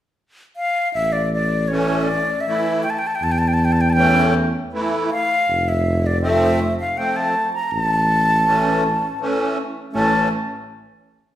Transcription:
0.57 flute F5
0.94 tuba A1, flute E5
1.12 flute D5
1.34 flute D5
1.68 accordion E3 A3 C#4, flute C#5
1.99 flute E5
2.04 flute D5
2.41 flute E5
2.47 accordion E3 A3 E4
2.83 flute G5
2.90 flute A5
2.99 flute G5
3.07 flute A5
3.15 flute G5
3.22 tuba E2, flute A5
3.32 flute G5
3.38 flute A5
3.48 flute G5
3.54 flute A5
3.65 flute G5
3.72 flute A5
3.81 flute G5
3.90 flute G5 A5
3.96 accordion E3 A3 C#4
4.72 accordion E3 A3 E4
5.11 flute F5
5.49 tuba F1
5.68 flute E5
6.06 flute D5
6.22 accordion F3 A3 C4, flute E5
6.80 flute F5
6.97 accordion F3 A3 C4, flute G5
7.16 flute A5
7.54 flute A#5
7.71 tuba A1, flute A5
8.45 accordion E3 A3 C#4
9.20 accordion E3 A3 C#4
9.93 tuba A1, accordion E3 A3 C#4, flute A5

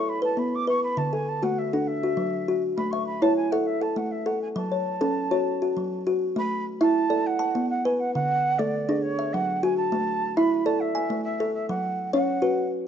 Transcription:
Already playing: kalimba E5, flute C#6
0.09 flute B5
0.22 kalimba B4, flute A5
0.37 kalimba B3, flute B5
0.55 flute D6
0.67 kalimba B4, flute C#6
0.83 flute B5
0.97 kalimba D3, flute A5
1.13 kalimba A4, flute G#5
1.28 flute A5
1.43 kalimba A3 F#4, flute F#5
1.58 flute E5
1.73 kalimba D4 A4, flute F#5
1.87 flute E5
2.03 kalimba F#4
2.17 kalimba F#3
2.48 kalimba F#4
2.77 kalimba A3, flute B5
2.91 kalimba E5, flute C#6
3.06 flute B5
3.21 kalimba E4 C#5, flute A5
3.36 flute G#5
3.51 kalimba A4 E5, flute F#5
3.66 flute E5
3.81 kalimba A4, flute A5
3.96 kalimba A3, flute F#5
4.11 flute E5
4.26 kalimba A4, flute F#5
4.42 flute G#5
4.56 kalimba F#3, flute A5
4.72 kalimba C#5
5.01 kalimba C#4 A4
5.31 kalimba F#4 C#5
5.62 kalimba F#4
5.77 kalimba F#3
6.07 kalimba F#4
6.36 kalimba A3, flute B5
6.81 kalimba E4 E5, flute A5
7.10 kalimba A4 D5
7.26 flute F#5
7.39 kalimba A5
7.55 kalimba B3
7.69 flute F#5
7.84 kalimba B4, flute G#5
7.99 flute F#5
8.14 kalimba D3, flute F#5
8.58 kalimba A3 A4, flute D5
8.89 kalimba D4 G#4
9.01 flute C#5
9.19 kalimba E5
9.33 kalimba F#3, flute F#5
9.63 kalimba F#4, flute G#5
9.77 flute A5
9.92 kalimba A3
10.36 kalimba E4 E5, flute B5
10.65 kalimba A4 D5, flute A5
10.80 flute E5
10.95 kalimba G#5
11.10 kalimba A3
11.24 flute E5
11.40 kalimba A4
11.54 flute E5
11.69 kalimba F#3, flute F#5
12.13 kalimba C#4 C#5, flute F#5
12.42 kalimba F#4 B4

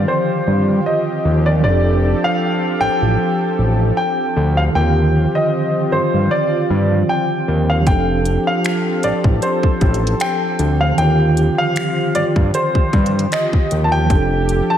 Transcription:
Already playing: tine electric piano D3 D#3 F4 G4, analog synth pad F3 C4 F4 G4
0.08 grand piano C5
0.47 analog synth bass G2
0.86 grand piano D#5
1.25 analog synth bass D#2
1.46 grand piano D5
1.59 tine electric piano F3 D4
1.64 analog synth bass F1, analog synth pad F3 C4 A4, tine electric piano G4, grand piano D5
1.69 tine electric piano A4
2.24 grand piano F5
2.81 analog synth bass A1, grand piano G5
3.02 analog synth bass A1
3.59 analog synth bass A1
3.97 grand piano G5
4.36 analog synth bass D2
4.57 grand piano F5
4.71 tine electric piano D3 D#3
4.75 analog synth bass D#2, analog synth pad F3 F4, tine electric piano F4, grand piano G5
4.81 tine electric piano G4
5.35 grand piano D#5
5.92 analog synth bass G2, grand piano C5
6.14 analog synth bass G2
6.31 grand piano D5
6.70 analog synth bass G2
7.09 grand piano G5
7.48 analog synth bass D#2
7.70 grand piano F5
7.82 tine electric piano F3 D4
7.86 analog synth bass F1, analog synth pad F3 G4 A4, tine electric piano G4, grand piano G5, kick, closed hi-hat
7.92 tine electric piano A4
8.25 closed hi-hat
8.47 grand piano F5
8.64 finger snap, closed hi-hat
9.03 analog synth bass A1, grand piano D5, closed hi-hat
9.24 analog synth bass A1, kick
9.42 grand piano C5, closed hi-hat
9.63 kick
9.81 analog synth bass A1, kick, closed hi-hat
9.94 closed hi-hat
10.07 closed hi-hat
10.20 grand piano G5, finger snap, closed hi-hat
10.59 analog synth bass D2, closed hi-hat
10.81 grand piano F5
10.94 tine electric piano D3 D#3, analog synth pad G4
10.98 analog synth bass D#2, analog synth pad F3 F4, tine electric piano F4, grand piano G5, closed hi-hat
11.04 tine electric piano G4
11.37 closed hi-hat
11.58 grand piano F5
11.76 finger snap, closed hi-hat
12.15 analog synth bass G2, grand piano D5, closed hi-hat
12.36 analog synth bass G2, kick
12.54 grand piano C5, closed hi-hat
12.75 kick
12.93 analog synth bass G2, kick, closed hi-hat
13.06 closed hi-hat
13.19 closed hi-hat
13.32 grand piano D#5, finger snap, closed hi-hat
13.53 kick
13.71 analog synth bass D#2, closed hi-hat
13.84 grand piano A5
13.92 grand piano G5
14.06 tine electric piano F3 D4, analog synth pad F3
14.10 analog synth bass F1, tine electric piano G4, analog synth pad A4, kick, closed hi-hat
14.16 tine electric piano A4
14.49 closed hi-hat
14.70 grand piano A5

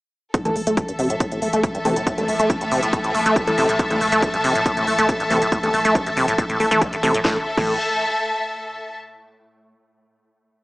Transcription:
0.34 acid bass A2, synth drone A2 A3, string section A4, kick, closed hi-hat
0.45 808-style bass A1, acid bass G2, synth stab E3 A3 A4, closed hi-hat
0.56 808-style bass A1, acid bass A3, open hi-hat
0.67 808-style bass A1, acid bass A3, closed hi-hat
0.77 acid bass C3, kick, closed hi-hat
0.88 808-style bass A1, acid bass G2, string section E5, closed hi-hat
0.99 808-style bass A1, acid bass C3, open hi-hat
1.10 808-style bass A1, acid bass A2, closed hi-hat
1.20 acid bass A2, kick, closed hi-hat
1.32 808-style bass A1, acid bass A2, closed hi-hat
1.42 808-style bass A1, acid bass A3, open hi-hat
1.53 808-style bass A1, acid bass A3, closed hi-hat
1.64 acid bass G2, kick, closed hi-hat
1.68 string section A5
1.75 808-style bass A1, acid bass G2, closed hi-hat
1.85 808-style bass A1, acid bass C3, synth stab E3 A3 A4, open hi-hat
1.96 808-style bass A1, acid bass A2, closed hi-hat
2.07 acid bass A2, kick, closed hi-hat
2.18 808-style bass A1, acid bass G2, synth stab E3 A3 A4, closed hi-hat
2.28 808-style bass A1, acid bass A3, open hi-hat
2.39 808-style bass A1, acid bass A3, closed hi-hat
2.50 acid bass C3, kick, closed hi-hat
2.61 808-style bass A1, acid bass G2, closed hi-hat
2.71 808-style bass A1, acid bass C3, open hi-hat
2.83 808-style bass A1, acid bass A2, closed hi-hat
2.93 acid bass A2, kick, closed hi-hat
3.04 808-style bass A1, acid bass A2, closed hi-hat
3.15 808-style bass A1, acid bass A3, open hi-hat
3.26 808-style bass A1, acid bass A3, closed hi-hat
3.36 acid bass G2, kick, closed hi-hat
3.47 808-style bass A1, acid bass G2, synth stab E3 A3 A4, closed hi-hat
3.58 808-style bass A1, acid bass C3, synth stab E3 A3 A4, open hi-hat
3.69 808-style bass A1, acid bass A2, closed hi-hat
3.79 acid bass A2, kick, closed hi-hat
3.91 808-style bass A1, acid bass G2, synth stab E3 A3 A4, closed hi-hat
4.01 808-style bass A1, acid bass A3, open hi-hat
4.12 808-style bass A1, acid bass A3, closed hi-hat
4.23 acid bass C3, kick, closed hi-hat
4.34 808-style bass A1, acid bass G2, closed hi-hat
4.44 808-style bass A1, acid bass C3, open hi-hat
4.55 808-style bass A1, acid bass A2, closed hi-hat
4.66 acid bass A2, kick, closed hi-hat
4.77 808-style bass A1, acid bass A2, closed hi-hat
4.87 808-style bass A1, acid bass A3, open hi-hat
4.98 808-style bass A1, acid bass A3, closed hi-hat
5.09 acid bass G2, kick, closed hi-hat
5.20 808-style bass A1, acid bass G2, closed hi-hat
5.30 808-style bass A1, acid bass C3, synth stab E3 A3 A4, open hi-hat
5.42 808-style bass A1, acid bass A2, closed hi-hat
5.52 acid bass A2, kick, closed hi-hat
5.63 808-style bass A1, acid bass G2, synth stab E3 A3 A4, closed hi-hat
5.74 808-style bass A1, acid bass A3, open hi-hat
5.85 808-style bass A1, acid bass A3, closed hi-hat
5.95 acid bass C3, kick, closed hi-hat
6.06 808-style bass A1, acid bass G2, closed hi-hat
6.17 808-style bass A1, acid bass C3, open hi-hat
6.28 808-style bass A1, acid bass A2, closed hi-hat
6.38 acid bass A2, kick, closed hi-hat
6.50 808-style bass A1, acid bass A2, closed hi-hat
6.60 808-style bass A1, synth stab E3 A3 A4, acid bass A3, open hi-hat
6.71 808-style bass A1, synth stab E3 A3 A4, acid bass A3, closed hi-hat
6.82 acid bass G2, kick, closed hi-hat
6.93 808-style bass A1, acid bass G2, closed hi-hat
7.03 808-style bass A1, acid bass C3, synth stab E3 A3 A4, open hi-hat
7.14 808-style bass A1, acid bass A2, closed hi-hat
7.25 808-style bass A1, acid bass A2, synth stab E3 A3 A4, string section A4, kick, snare
7.32 string section E5
7.38 string section A5
7.57 808-style bass A1, acid bass A2, synth stab E3 A3 A4, kick, crash

